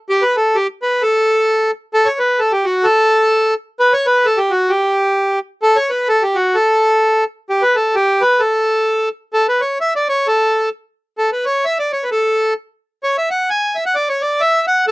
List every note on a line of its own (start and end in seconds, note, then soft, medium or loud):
0.10 0.23 G4 loud
0.22 0.36 B4 loud
0.37 0.56 A4 medium
0.55 0.67 G4 medium
0.82 1.02 B4 medium
1.02 1.71 A4 medium
1.94 2.08 A4 loud
2.05 2.19 C#5 medium
2.19 2.40 B4 medium
2.39 2.52 A4 medium
2.52 2.65 G4 medium
2.65 2.86 F#4 medium
2.84 3.54 A4 loud
3.80 3.93 B4 loud
3.93 4.06 C#5 loud
4.07 4.26 B4 medium
4.26 4.39 A4 loud
4.38 4.52 G4 medium
4.51 4.71 F#4 medium
4.70 5.39 G4 medium
5.63 5.77 A4 loud
5.76 5.90 C#5 loud
5.90 6.08 B4 medium
6.09 6.23 A4 loud
6.23 6.37 G4 medium
6.35 6.56 F#4 medium
6.55 7.24 A4 medium
7.50 7.63 G4 medium
7.62 7.76 B4 loud
7.76 7.95 A4 medium
7.95 8.22 G4 loud
8.21 8.41 B4 loud
8.40 9.09 A4 medium
9.33 9.47 A4 medium
9.49 9.61 B4 medium
9.61 9.78 C#5 medium
9.81 9.94 E5 medium
9.96 10.08 D5 medium
10.09 10.27 C#5 medium
10.27 10.69 A4 medium
11.18 11.30 A4 medium
11.32 11.45 B4 medium
11.45 11.65 C#5 medium
11.65 11.78 E5 loud
11.79 11.92 D5 medium
11.93 12.04 C#5 medium
12.04 12.10 B4 medium
12.11 12.54 A4 medium
13.04 13.17 C#5 medium
13.18 13.29 E5 medium
13.30 13.50 F#5 medium
13.50 13.77 G#5 medium
13.75 13.84 E5 medium
13.86 13.95 F#5 medium
13.95 14.09 D5 medium
14.09 14.22 C#5 medium
14.22 14.41 D5 medium
14.41 14.66 E5 loud
14.67 14.85 F#5 medium
14.88 14.91 A4 loud